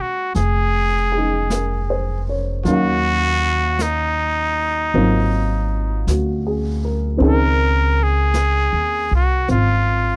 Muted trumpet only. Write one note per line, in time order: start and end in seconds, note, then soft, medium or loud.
0.01 0.35 F#4 medium
0.36 2.26 G#4 medium
2.65 3.83 F#4 loud
3.82 6.09 D#4 medium
7.27 8.04 A#4 medium
8.03 9.14 G#4 medium
9.15 9.47 F#4 medium
9.51 10.16 F4 medium